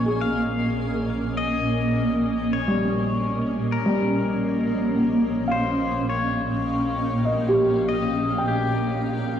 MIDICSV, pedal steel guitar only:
0, 0, Header, 1, 2, 480
1, 0, Start_track
1, 0, Tempo, 1183432
1, 1511, Time_signature, 4, 2, 24, 8
1, 3811, End_track
2, 0, Start_track
2, 0, Title_t, "Pedal steel guitar"
2, 0, Program_c, 0, 26
2, 0, Note_on_c, 0, 73, 97
2, 87, Note_on_c, 0, 77, 94
2, 92, Note_off_c, 0, 73, 0
2, 556, Note_off_c, 0, 77, 0
2, 557, Note_on_c, 0, 75, 94
2, 1027, Note_on_c, 0, 73, 85
2, 1049, Note_off_c, 0, 75, 0
2, 1373, Note_off_c, 0, 73, 0
2, 1510, Note_on_c, 0, 70, 101
2, 2237, Note_on_c, 0, 72, 81
2, 2251, Note_off_c, 0, 70, 0
2, 2471, Note_off_c, 0, 72, 0
2, 2472, Note_on_c, 0, 73, 83
2, 3196, Note_off_c, 0, 73, 0
2, 3198, Note_on_c, 0, 75, 89
2, 3439, Note_on_c, 0, 67, 94
2, 3445, Note_off_c, 0, 75, 0
2, 3811, Note_off_c, 0, 67, 0
2, 3811, End_track
0, 0, End_of_file